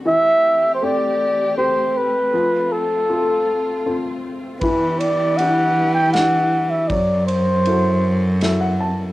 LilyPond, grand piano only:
\new Staff \with { instrumentName = "Grand piano" } { \time 3/4 \key e \minor \tempo 4 = 79 << { r2. | r2. | r2. | r2 e''16 fis''16 a''8 | } \\ { e4 <a c' g'>4 <a c' g'>4 | f4 <c' f' a'>4 <c' f' a'>4 | e4 <d' e' g'>4 <d' e' g'>4 | fis4 <e' fis' a'>4 <e' fis' a'>4 | } >> }